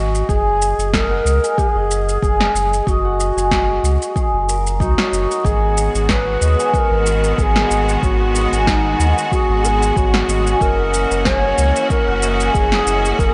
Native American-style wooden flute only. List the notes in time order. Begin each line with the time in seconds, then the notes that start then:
Already playing: F#4
0.29 G#4
0.94 A#4
1.58 G#4
2.88 F#4
4.81 F#4
5.45 G#4
6.10 B4
6.74 B4
6.78 A#4
7.38 A#4
7.42 G#4
8.03 F#4
8.67 D#4
9.32 F#4
9.65 G#4 A#4
9.97 F#4
10.62 A#4
11.26 C#5
11.90 A#4
12.54 G#4
13.19 A#4